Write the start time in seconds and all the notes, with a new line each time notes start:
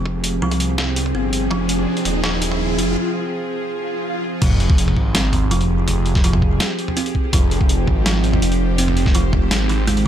Already playing: F1 F3 C4 G4 G#4, riser
0.06 kick, mid tom
0.24 closed hi-hat
0.42 C2 F3
0.51 closed hi-hat, mid tom
0.60 closed hi-hat
0.78 snare
0.96 closed hi-hat
1.06 mid tom
1.14 G1 C4
1.33 closed hi-hat
1.51 F1 F3 F4, kick, mid tom
1.69 closed hi-hat
1.97 closed hi-hat
2.05 D#1, closed hi-hat, mid tom
2.24 F3, snare
2.42 closed hi-hat
2.52 mid tom
2.78 F1, closed hi-hat
3.69 swell
4.42 F1 F3 C4 G4 G#4, kick, closed hi-hat, crash, sub drop
4.60 closed hi-hat
4.70 kick
4.78 closed hi-hat
4.88 mid tom
4.97 G#1, kick
5.15 C4, snare, closed hi-hat
5.33 closed hi-hat, mid tom
5.51 F1 F3, closed hi-hat
5.61 closed hi-hat
5.88 closed hi-hat, mid tom
6.06 closed hi-hat
6.15 kick, snare
6.24 F3, closed hi-hat
6.33 mid tom
6.42 kick
6.60 snare, closed hi-hat
6.79 closed hi-hat
6.88 mid tom
6.97 C4, closed hi-hat
7.06 closed hi-hat
7.15 kick
7.33 F1 F3 C5, kick, closed hi-hat, mid tom
7.51 closed hi-hat
7.61 kick
7.69 closed hi-hat
7.87 G#1, kick, mid tom
8.06 F3, snare, closed hi-hat
8.24 closed hi-hat
8.33 mid tom
8.42 F1, closed hi-hat
8.52 closed hi-hat
8.78 C4, closed hi-hat
8.88 mid tom
8.97 closed hi-hat
9.06 kick, snare
9.15 F3, closed hi-hat
9.33 kick, mid tom
9.51 G#1, snare, closed hi-hat
9.69 D#3, closed hi-hat
9.87 G#3, closed hi-hat, mid tom
9.97 closed hi-hat